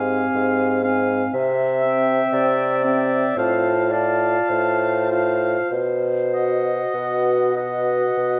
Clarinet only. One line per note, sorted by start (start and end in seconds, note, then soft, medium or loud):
0.00 0.80 G4 medium
1.33 2.34 E5 medium
2.33 3.38 D5 medium
3.37 3.93 C5 medium
3.91 4.51 D5 medium
4.49 5.69 C5 medium
5.70 6.96 C5 medium
6.94 8.40 B4 medium